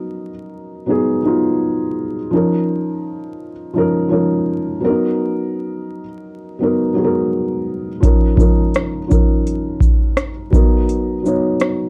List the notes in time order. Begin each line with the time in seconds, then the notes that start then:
Already playing: F#3 B3 D#4 A#4
0.86 F#3 B3 D#4
0.90 G#4
1.23 F#3 B3 D#4
1.27 F4
2.31 F3 C#4 D#4
2.35 A#4
3.74 F3 C#4 D#4
3.78 A#4
4.09 F3 C#4 D#4
4.13 A#4
4.80 F#3 B3 C#4
4.85 A#4
4.89 D#4
6.59 F#3 B3 D#4
6.63 A#4
6.94 F#3 B3 D#4
6.98 G#4
7.04 A#4
8.00 F3 C#4 D#4 A#4, kick, closed hi-hat
8.36 F3 C#4 D#4, kick
8.40 A#4, shaker
8.74 cross-stick, closed hi-hat
9.08 F3 C#4 D#4, kick, shaker
9.12 A#4
9.47 closed hi-hat
9.80 kick, shaker
10.17 cross-stick, closed hi-hat
10.51 F#3 B3 D#4, kick, shaker
10.55 A#4
10.89 closed hi-hat
11.22 F#3 B3 D#4, shaker
11.27 C#5
11.60 cross-stick, closed hi-hat